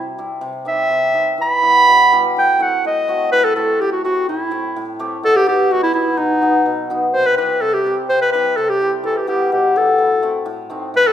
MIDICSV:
0, 0, Header, 1, 3, 480
1, 0, Start_track
1, 0, Tempo, 477707
1, 438, Time_signature, 2, 2, 24, 8
1, 11180, End_track
2, 0, Start_track
2, 0, Title_t, "Clarinet"
2, 0, Program_c, 0, 71
2, 0, Note_on_c, 0, 64, 80
2, 112, Note_off_c, 0, 64, 0
2, 681, Note_on_c, 0, 76, 100
2, 1364, Note_off_c, 0, 76, 0
2, 1424, Note_on_c, 0, 83, 127
2, 2339, Note_off_c, 0, 83, 0
2, 2398, Note_on_c, 0, 79, 103
2, 2637, Note_on_c, 0, 78, 90
2, 2652, Note_off_c, 0, 79, 0
2, 2864, Note_off_c, 0, 78, 0
2, 2880, Note_on_c, 0, 75, 89
2, 3314, Note_off_c, 0, 75, 0
2, 3336, Note_on_c, 0, 71, 116
2, 3462, Note_on_c, 0, 69, 99
2, 3477, Note_off_c, 0, 71, 0
2, 3571, Note_off_c, 0, 69, 0
2, 3577, Note_on_c, 0, 69, 91
2, 3824, Note_on_c, 0, 67, 96
2, 3839, Note_off_c, 0, 69, 0
2, 3935, Note_off_c, 0, 67, 0
2, 3941, Note_on_c, 0, 66, 85
2, 4049, Note_off_c, 0, 66, 0
2, 4063, Note_on_c, 0, 66, 95
2, 4282, Note_off_c, 0, 66, 0
2, 4306, Note_on_c, 0, 64, 83
2, 4980, Note_off_c, 0, 64, 0
2, 5271, Note_on_c, 0, 69, 115
2, 5383, Note_on_c, 0, 67, 105
2, 5398, Note_off_c, 0, 69, 0
2, 5498, Note_off_c, 0, 67, 0
2, 5509, Note_on_c, 0, 67, 97
2, 5746, Note_on_c, 0, 66, 95
2, 5761, Note_off_c, 0, 67, 0
2, 5850, Note_off_c, 0, 66, 0
2, 5856, Note_on_c, 0, 64, 106
2, 5963, Note_off_c, 0, 64, 0
2, 5969, Note_on_c, 0, 64, 85
2, 6209, Note_on_c, 0, 63, 96
2, 6224, Note_off_c, 0, 64, 0
2, 6930, Note_off_c, 0, 63, 0
2, 7165, Note_on_c, 0, 72, 111
2, 7295, Note_on_c, 0, 71, 109
2, 7310, Note_off_c, 0, 72, 0
2, 7405, Note_off_c, 0, 71, 0
2, 7411, Note_on_c, 0, 71, 88
2, 7652, Note_on_c, 0, 69, 98
2, 7667, Note_off_c, 0, 71, 0
2, 7771, Note_on_c, 0, 67, 95
2, 7786, Note_off_c, 0, 69, 0
2, 8010, Note_off_c, 0, 67, 0
2, 8131, Note_on_c, 0, 72, 108
2, 8242, Note_off_c, 0, 72, 0
2, 8254, Note_on_c, 0, 71, 104
2, 8357, Note_off_c, 0, 71, 0
2, 8363, Note_on_c, 0, 71, 102
2, 8605, Note_on_c, 0, 69, 93
2, 8620, Note_off_c, 0, 71, 0
2, 8733, Note_on_c, 0, 67, 106
2, 8748, Note_off_c, 0, 69, 0
2, 8969, Note_off_c, 0, 67, 0
2, 9093, Note_on_c, 0, 69, 93
2, 9211, Note_on_c, 0, 67, 78
2, 9226, Note_off_c, 0, 69, 0
2, 9320, Note_off_c, 0, 67, 0
2, 9326, Note_on_c, 0, 67, 93
2, 9548, Note_off_c, 0, 67, 0
2, 9572, Note_on_c, 0, 67, 89
2, 9815, Note_on_c, 0, 69, 89
2, 9830, Note_off_c, 0, 67, 0
2, 10525, Note_off_c, 0, 69, 0
2, 11019, Note_on_c, 0, 71, 114
2, 11128, Note_on_c, 0, 69, 104
2, 11143, Note_off_c, 0, 71, 0
2, 11180, Note_off_c, 0, 69, 0
2, 11180, End_track
3, 0, Start_track
3, 0, Title_t, "Hammered dulcimer"
3, 0, Program_c, 1, 15
3, 0, Note_on_c, 1, 48, 67
3, 0, Note_on_c, 1, 55, 58
3, 172, Note_off_c, 1, 55, 0
3, 184, Note_on_c, 1, 55, 64
3, 187, Note_on_c, 1, 60, 57
3, 191, Note_on_c, 1, 64, 72
3, 312, Note_off_c, 1, 60, 0
3, 314, Note_off_c, 1, 64, 0
3, 402, Note_off_c, 1, 48, 0
3, 414, Note_on_c, 1, 48, 92
3, 641, Note_off_c, 1, 55, 0
3, 653, Note_on_c, 1, 55, 70
3, 657, Note_on_c, 1, 60, 55
3, 663, Note_on_c, 1, 63, 74
3, 789, Note_off_c, 1, 60, 0
3, 792, Note_off_c, 1, 63, 0
3, 895, Note_off_c, 1, 48, 0
3, 907, Note_on_c, 1, 48, 73
3, 1127, Note_off_c, 1, 55, 0
3, 1139, Note_on_c, 1, 55, 58
3, 1146, Note_on_c, 1, 63, 71
3, 1147, Note_on_c, 1, 60, 65
3, 1275, Note_off_c, 1, 63, 0
3, 1276, Note_off_c, 1, 60, 0
3, 1386, Note_on_c, 1, 52, 69
3, 1454, Note_off_c, 1, 48, 0
3, 1454, Note_off_c, 1, 55, 0
3, 1627, Note_on_c, 1, 55, 71
3, 1634, Note_on_c, 1, 59, 59
3, 1636, Note_on_c, 1, 64, 79
3, 1761, Note_off_c, 1, 59, 0
3, 1761, Note_off_c, 1, 64, 0
3, 1882, Note_on_c, 1, 47, 76
3, 1937, Note_off_c, 1, 52, 0
3, 2118, Note_off_c, 1, 55, 0
3, 2130, Note_on_c, 1, 55, 86
3, 2134, Note_on_c, 1, 59, 67
3, 2141, Note_on_c, 1, 64, 94
3, 2251, Note_off_c, 1, 59, 0
3, 2255, Note_off_c, 1, 64, 0
3, 2378, Note_on_c, 1, 45, 71
3, 2419, Note_off_c, 1, 47, 0
3, 2419, Note_off_c, 1, 55, 0
3, 2605, Note_on_c, 1, 57, 77
3, 2607, Note_on_c, 1, 60, 64
3, 2613, Note_on_c, 1, 64, 85
3, 2728, Note_off_c, 1, 57, 0
3, 2729, Note_off_c, 1, 60, 0
3, 2732, Note_off_c, 1, 64, 0
3, 2847, Note_off_c, 1, 45, 0
3, 2859, Note_on_c, 1, 45, 76
3, 3094, Note_on_c, 1, 57, 64
3, 3099, Note_on_c, 1, 60, 68
3, 3105, Note_on_c, 1, 66, 83
3, 3213, Note_off_c, 1, 57, 0
3, 3215, Note_off_c, 1, 60, 0
3, 3218, Note_off_c, 1, 66, 0
3, 3332, Note_off_c, 1, 45, 0
3, 3344, Note_on_c, 1, 45, 77
3, 3576, Note_on_c, 1, 57, 75
3, 3579, Note_on_c, 1, 60, 60
3, 3584, Note_on_c, 1, 64, 82
3, 3694, Note_off_c, 1, 57, 0
3, 3696, Note_off_c, 1, 60, 0
3, 3698, Note_off_c, 1, 64, 0
3, 3822, Note_off_c, 1, 45, 0
3, 3834, Note_on_c, 1, 45, 79
3, 4064, Note_on_c, 1, 57, 67
3, 4069, Note_on_c, 1, 60, 62
3, 4075, Note_on_c, 1, 64, 74
3, 4179, Note_off_c, 1, 57, 0
3, 4181, Note_off_c, 1, 60, 0
3, 4184, Note_off_c, 1, 64, 0
3, 4299, Note_off_c, 1, 45, 0
3, 4311, Note_on_c, 1, 45, 74
3, 4532, Note_on_c, 1, 57, 71
3, 4534, Note_on_c, 1, 60, 68
3, 4537, Note_on_c, 1, 64, 81
3, 4653, Note_off_c, 1, 57, 0
3, 4654, Note_off_c, 1, 60, 0
3, 4655, Note_off_c, 1, 64, 0
3, 4775, Note_off_c, 1, 45, 0
3, 4787, Note_on_c, 1, 45, 85
3, 5018, Note_on_c, 1, 57, 84
3, 5020, Note_on_c, 1, 60, 65
3, 5023, Note_on_c, 1, 67, 95
3, 5137, Note_off_c, 1, 57, 0
3, 5137, Note_off_c, 1, 60, 0
3, 5138, Note_off_c, 1, 67, 0
3, 5259, Note_on_c, 1, 47, 74
3, 5304, Note_off_c, 1, 45, 0
3, 5492, Note_on_c, 1, 54, 71
3, 5496, Note_on_c, 1, 63, 87
3, 5497, Note_on_c, 1, 59, 64
3, 5615, Note_off_c, 1, 59, 0
3, 5615, Note_off_c, 1, 63, 0
3, 5724, Note_off_c, 1, 47, 0
3, 5736, Note_on_c, 1, 47, 83
3, 5947, Note_off_c, 1, 54, 0
3, 5959, Note_on_c, 1, 54, 72
3, 5962, Note_on_c, 1, 59, 64
3, 5964, Note_on_c, 1, 63, 74
3, 6087, Note_off_c, 1, 59, 0
3, 6089, Note_off_c, 1, 63, 0
3, 6190, Note_off_c, 1, 47, 0
3, 6202, Note_on_c, 1, 47, 78
3, 6432, Note_off_c, 1, 54, 0
3, 6444, Note_on_c, 1, 54, 68
3, 6449, Note_on_c, 1, 59, 68
3, 6455, Note_on_c, 1, 63, 82
3, 6571, Note_off_c, 1, 59, 0
3, 6574, Note_off_c, 1, 63, 0
3, 6678, Note_off_c, 1, 47, 0
3, 6690, Note_on_c, 1, 47, 80
3, 6921, Note_off_c, 1, 54, 0
3, 6932, Note_on_c, 1, 54, 70
3, 6935, Note_on_c, 1, 59, 74
3, 6943, Note_on_c, 1, 63, 89
3, 7053, Note_off_c, 1, 59, 0
3, 7057, Note_off_c, 1, 63, 0
3, 7176, Note_on_c, 1, 48, 65
3, 7222, Note_off_c, 1, 47, 0
3, 7222, Note_off_c, 1, 54, 0
3, 7414, Note_on_c, 1, 55, 73
3, 7417, Note_on_c, 1, 60, 74
3, 7420, Note_on_c, 1, 64, 78
3, 7534, Note_off_c, 1, 60, 0
3, 7535, Note_off_c, 1, 64, 0
3, 7643, Note_off_c, 1, 48, 0
3, 7655, Note_on_c, 1, 48, 77
3, 7883, Note_off_c, 1, 55, 0
3, 7895, Note_on_c, 1, 55, 59
3, 7901, Note_on_c, 1, 60, 63
3, 7902, Note_on_c, 1, 67, 69
3, 8015, Note_off_c, 1, 60, 0
3, 8016, Note_off_c, 1, 67, 0
3, 8122, Note_off_c, 1, 48, 0
3, 8134, Note_on_c, 1, 48, 78
3, 8365, Note_off_c, 1, 55, 0
3, 8377, Note_on_c, 1, 55, 68
3, 8377, Note_on_c, 1, 60, 67
3, 8386, Note_on_c, 1, 64, 81
3, 8492, Note_off_c, 1, 60, 0
3, 8497, Note_off_c, 1, 64, 0
3, 8606, Note_off_c, 1, 48, 0
3, 8618, Note_on_c, 1, 48, 82
3, 8839, Note_off_c, 1, 55, 0
3, 8851, Note_on_c, 1, 55, 68
3, 8860, Note_on_c, 1, 64, 70
3, 8861, Note_on_c, 1, 60, 65
3, 8973, Note_off_c, 1, 64, 0
3, 8974, Note_off_c, 1, 60, 0
3, 9079, Note_on_c, 1, 52, 79
3, 9137, Note_off_c, 1, 48, 0
3, 9137, Note_off_c, 1, 55, 0
3, 9317, Note_on_c, 1, 55, 77
3, 9322, Note_on_c, 1, 59, 73
3, 9327, Note_on_c, 1, 64, 86
3, 9444, Note_off_c, 1, 59, 0
3, 9446, Note_off_c, 1, 64, 0
3, 9565, Note_on_c, 1, 47, 80
3, 9615, Note_off_c, 1, 52, 0
3, 9790, Note_off_c, 1, 55, 0
3, 9802, Note_on_c, 1, 55, 71
3, 9804, Note_on_c, 1, 59, 62
3, 9808, Note_on_c, 1, 64, 75
3, 9923, Note_off_c, 1, 59, 0
3, 9925, Note_off_c, 1, 64, 0
3, 10032, Note_on_c, 1, 45, 73
3, 10093, Note_off_c, 1, 47, 0
3, 10093, Note_off_c, 1, 55, 0
3, 10273, Note_on_c, 1, 57, 76
3, 10277, Note_on_c, 1, 60, 69
3, 10280, Note_on_c, 1, 64, 79
3, 10397, Note_off_c, 1, 57, 0
3, 10398, Note_off_c, 1, 60, 0
3, 10400, Note_off_c, 1, 64, 0
3, 10494, Note_off_c, 1, 45, 0
3, 10506, Note_on_c, 1, 45, 92
3, 10747, Note_on_c, 1, 57, 72
3, 10753, Note_on_c, 1, 60, 78
3, 10759, Note_on_c, 1, 63, 75
3, 10872, Note_off_c, 1, 57, 0
3, 10875, Note_off_c, 1, 60, 0
3, 10878, Note_off_c, 1, 63, 0
3, 10980, Note_off_c, 1, 45, 0
3, 10992, Note_on_c, 1, 45, 79
3, 11180, Note_off_c, 1, 45, 0
3, 11180, End_track
0, 0, End_of_file